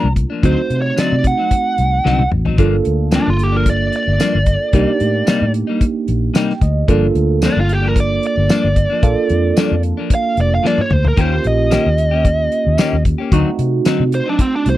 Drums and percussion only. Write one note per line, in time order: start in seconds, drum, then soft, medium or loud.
0.16 kick medium
0.16 closed hi-hat medium
0.43 kick loud
0.43 closed hi-hat medium
0.70 closed hi-hat medium
0.97 snare medium
0.97 closed hi-hat medium
0.97 tambourine medium
1.24 kick medium
1.24 closed hi-hat medium
1.51 kick medium
1.51 closed hi-hat medium
1.78 closed hi-hat medium
2.06 snare medium
2.19 high tom medium
2.31 mid tom medium
2.46 floor tom medium
2.58 kick loud
2.58 closed hi-hat medium
2.85 closed hi-hat medium
3.11 snare loud
3.11 closed hi-hat medium
3.11 tambourine loud
3.39 closed hi-hat medium
3.66 kick medium
3.66 closed hi-hat medium
3.93 closed hi-hat medium
4.20 snare loud
4.20 closed hi-hat medium
4.20 tambourine loud
4.46 kick medium
4.46 closed hi-hat medium
4.73 kick loud
4.73 closed hi-hat medium
5.00 closed hi-hat medium
5.27 snare loud
5.27 closed hi-hat medium
5.27 tambourine loud
5.54 closed hi-hat medium
5.81 kick medium
5.81 closed hi-hat medium
6.08 closed hi-hat medium
6.35 snare loud
6.35 closed hi-hat medium
6.35 tambourine loud
6.50 snare soft
6.61 kick medium
6.61 closed hi-hat medium
6.88 kick loud
6.88 closed hi-hat medium
7.15 closed hi-hat medium
7.42 snare loud
7.42 closed hi-hat medium
7.42 tambourine loud
7.69 closed hi-hat medium
7.96 kick medium
7.96 closed hi-hat medium
8.23 closed hi-hat medium
8.49 snare loud
8.49 closed hi-hat medium
8.49 tambourine loud
8.76 kick medium
8.76 closed hi-hat medium
9.03 kick loud
9.03 closed hi-hat medium
9.29 closed hi-hat medium
9.57 snare loud
9.57 closed hi-hat medium
9.57 tambourine loud
9.83 closed hi-hat medium
10.10 kick medium
10.10 closed hi-hat medium
10.37 closed hi-hat medium
10.65 snare medium
10.78 mid tom medium
10.91 mid tom medium
11.05 floor tom medium
11.17 kick loud
11.17 closed hi-hat medium
11.44 closed hi-hat medium
11.71 snare loud
11.71 closed hi-hat medium
11.71 tambourine loud
11.98 closed hi-hat medium
12.25 kick medium
12.25 closed hi-hat medium
12.52 closed hi-hat medium
12.78 snare loud
12.78 closed hi-hat medium
12.78 tambourine loud
13.05 kick medium
13.05 closed hi-hat medium
13.32 kick loud
13.32 closed hi-hat medium
13.59 closed hi-hat medium
13.85 snare loud
13.85 closed hi-hat medium
13.85 tambourine loud
14.12 closed hi-hat medium
14.39 kick medium
14.39 closed hi-hat medium
14.66 closed hi-hat medium